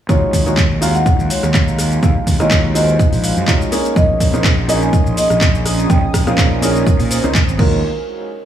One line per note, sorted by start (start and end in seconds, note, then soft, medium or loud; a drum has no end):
0.09 0.19 D#2 loud
0.09 0.41 G#3 loud
0.09 0.41 D#4 medium
0.09 0.41 F4 medium
0.09 0.41 F#4 loud
0.09 0.35 C#5 loud
0.09 0.41 C#5 loud
0.09 kick loud
0.09 closed hi-hat medium
0.09 shaker soft
0.33 0.43 D#2 medium
0.33 kick medium
0.33 open hi-hat loud
0.33 shaker medium
0.46 1.02 D#2 medium
0.46 0.56 G#3 loud
0.46 0.56 D#4 medium
0.46 0.56 F4 medium
0.46 0.57 F#4 medium
0.46 0.57 C#5 loud
0.46 closed hi-hat medium
0.46 shaker soft
0.57 kick loud
0.57 clap loud
0.57 closed hi-hat medium
0.57 shaker soft
0.81 2.36 G#3 loud
0.81 2.37 D#4 medium
0.81 2.37 F4 medium
0.81 2.37 F#4 medium
0.81 2.37 F5 loud
0.81 open hi-hat loud
0.81 shaker medium
0.95 1.14 F#5 loud
0.95 closed hi-hat medium
0.95 shaker soft
1.06 kick loud
1.06 closed hi-hat medium
1.06 shaker soft
1.19 1.27 D#2 loud
1.19 shaker soft
1.30 1.50 C#5 loud
1.30 open hi-hat loud
1.30 shaker medium
1.43 1.98 D#2 medium
1.43 cross-stick medium
1.43 shaker soft
1.54 kick loud
1.54 clap loud
1.54 closed hi-hat medium
1.54 shaker soft
1.68 shaker soft
1.79 cross-stick medium
1.79 open hi-hat loud
1.79 shaker medium
1.92 closed hi-hat medium
1.92 shaker soft
2.03 2.13 D#2 loud
2.03 2.22 F5 loud
2.03 kick loud
2.03 closed hi-hat medium
2.03 shaker soft
2.27 2.37 D#2 medium
2.27 kick medium
2.27 open hi-hat loud
2.27 shaker medium
2.40 2.95 D#2 medium
2.40 2.72 G#3 medium
2.40 2.72 D#4 medium
2.40 2.73 F4 medium
2.40 2.73 F#4 medium
2.40 2.73 C#5 medium
2.40 2.59 D#5 medium
2.40 cross-stick medium
2.40 closed hi-hat medium
2.40 shaker soft
2.51 kick loud
2.51 clap loud
2.51 closed hi-hat medium
2.51 shaker soft
2.75 3.45 G#3 medium
2.75 3.45 D#4 medium
2.75 3.45 F4 medium
2.75 3.45 F#4 medium
2.75 3.45 C5 medium
2.75 3.01 D#5 medium
2.75 open hi-hat loud
2.75 shaker medium
2.88 closed hi-hat medium
2.88 shaker soft
2.99 kick loud
2.99 closed hi-hat medium
2.99 shaker soft
3.13 3.30 A#1 medium
3.13 open hi-hat medium
3.13 shaker soft
3.24 3.87 F5 medium
3.24 open hi-hat loud
3.24 shaker medium
3.37 3.45 F#2 medium
3.37 closed hi-hat medium
3.37 shaker soft
3.47 3.69 G#3 medium
3.47 3.69 D#4 medium
3.47 3.69 F4 medium
3.47 3.69 F#4 medium
3.47 3.69 C#5 medium
3.47 kick loud
3.47 clap loud
3.47 closed hi-hat medium
3.47 shaker soft
3.62 shaker soft
3.71 4.30 A#3 loud
3.71 4.30 C#4 medium
3.71 4.30 D#4 medium
3.71 4.30 G#4 medium
3.71 4.31 C#5 loud
3.71 open hi-hat loud
3.71 shaker medium
3.85 closed hi-hat medium
3.85 shaker soft
3.96 4.06 A#1 loud
3.96 7.55 C#4 medium
3.96 4.22 D#5 loud
3.96 7.55 G#5 medium
3.96 5.88 C6 medium
3.96 7.55 D#6 loud
3.96 kick loud
3.96 closed hi-hat medium
3.96 shaker soft
4.20 4.30 A#1 medium
4.20 kick medium
4.20 open hi-hat loud
4.20 shaker medium
4.33 4.89 A#1 loud
4.33 4.43 A#3 loud
4.33 4.43 C#4 medium
4.33 4.44 D#4 medium
4.33 4.44 G#4 medium
4.33 4.44 C5 loud
4.33 shaker soft
4.44 kick loud
4.44 clap loud
4.44 closed hi-hat medium
4.44 shaker soft
4.68 6.24 A#3 medium
4.68 6.24 C#4 medium
4.68 6.24 D#4 medium
4.68 6.24 G#4 medium
4.68 6.24 D#5 loud
4.68 open hi-hat loud
4.68 shaker medium
4.82 5.01 G#5 loud
4.82 shaker soft
4.93 kick loud
4.93 closed hi-hat medium
4.93 shaker soft
5.06 5.14 A#1 loud
5.06 shaker soft
5.17 5.37 D#5 loud
5.17 open hi-hat loud
5.17 shaker medium
5.30 5.85 A#1 medium
5.30 cross-stick medium
5.30 closed hi-hat medium
5.30 shaker soft
5.41 kick loud
5.41 clap loud
5.41 closed hi-hat medium
5.41 shaker soft
5.55 shaker soft
5.66 cross-stick medium
5.66 open hi-hat loud
5.66 shaker medium
5.79 closed hi-hat medium
5.79 shaker soft
5.90 6.00 A#1 loud
5.90 6.09 G5 loud
5.90 7.57 A#5 medium
5.90 kick loud
5.90 closed hi-hat medium
5.90 shaker soft
6.14 6.24 A#1 medium
6.14 kick medium
6.14 cross-stick medium
6.14 open hi-hat loud
6.14 shaker medium
6.27 6.82 A#1 medium
6.27 6.59 A#3 medium
6.27 6.60 C#4 medium
6.27 6.60 D#4 medium
6.27 6.60 G#4 medium
6.27 6.60 C5 medium
6.27 6.46 F5 loud
6.27 cross-stick medium
6.27 closed hi-hat medium
6.27 shaker soft
6.38 kick loud
6.38 clap loud
6.38 closed hi-hat medium
6.38 shaker soft
6.62 7.21 A#3 medium
6.62 7.21 C#4 medium
6.62 7.21 D#4 medium
6.62 7.21 G#4 medium
6.62 7.21 A#4 medium
6.62 6.88 C#5 medium
6.62 open hi-hat loud
6.62 shaker medium
6.75 closed hi-hat medium
6.75 shaker soft
6.87 kick loud
6.87 closed hi-hat medium
6.87 shaker soft
7.00 7.17 A#2 medium
7.00 open hi-hat medium
7.00 shaker soft
7.11 7.59 C5 loud
7.11 open hi-hat loud
7.11 shaker medium
7.23 7.32 C#2 medium
7.23 7.34 A#3 medium
7.23 7.34 C#4 medium
7.23 7.34 D#4 medium
7.23 7.34 G#4 medium
7.23 7.34 C5 loud
7.23 shaker soft
7.35 kick loud
7.35 clap loud
7.35 closed hi-hat medium
7.35 shaker soft
7.48 7.58 G#1 medium
7.48 shaker soft
7.58 7.82 D#2 loud
7.58 7.77 G#3 medium
7.58 7.77 D#4 medium
7.58 7.77 F4 medium
7.58 7.82 F#4 medium
7.58 7.78 F#4 medium
7.58 7.77 A#4 loud
7.58 7.82 C#5 medium
7.58 7.78 C#5 loud
7.58 7.82 F5 medium
7.58 7.82 G#5 medium
7.58 kick loud
7.58 crash medium